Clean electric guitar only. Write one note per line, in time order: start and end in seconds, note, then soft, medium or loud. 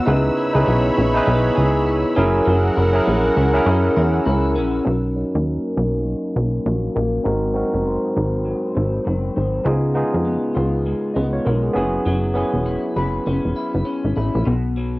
0.00 0.66 B3 medium
0.00 0.37 E4 medium
0.00 0.15 F#4 medium
0.06 2.23 C#3 medium
0.37 0.96 E4 medium
0.66 1.25 B3 medium
0.96 1.86 E4 medium
1.26 2.23 B3 medium
1.55 2.23 G#4 medium
1.86 2.49 E4 medium
2.16 2.45 F#3 medium
2.46 5.15 F#3 medium
2.77 3.35 E4 medium
3.06 3.65 C#4 medium
3.36 4.24 E4 medium
3.66 4.55 C#4 medium
3.96 7.29 A#4 medium
4.26 4.93 E4 medium
4.56 4.93 C#4 medium
5.16 6.04 F#3 medium
5.44 6.35 A#3 medium
5.75 8.15 D#4 medium
6.05 6.65 F#3 medium
6.36 6.94 A#3 soft
6.65 7.55 F#3 medium
6.95 7.33 A#3 medium
7.26 9.66 G#2 medium
7.55 8.43 F#3 medium
7.86 8.74 C4 medium
8.16 9.73 D#4 medium
8.45 9.04 F#3 medium
8.75 9.35 C4 medium
9.05 9.73 F#3 soft
9.36 9.73 C4 medium
9.65 11.82 C#3 medium
9.95 10.85 G#3 medium
10.25 11.15 B3 medium
10.55 11.83 F4 medium
10.86 11.45 G#3 medium
11.16 12.35 B3 medium
11.46 11.76 G#3 medium
11.77 12.06 F#3 medium
12.06 14.76 F#3 medium
12.35 13.25 C#4 medium
12.66 13.55 E4 soft
12.96 14.99 B4 medium
13.26 13.84 C#4 medium
13.56 14.15 E4 soft
13.85 14.53 C#4 medium
14.16 14.53 E4 medium
14.45 14.99 B2 medium
14.77 14.99 F#3 medium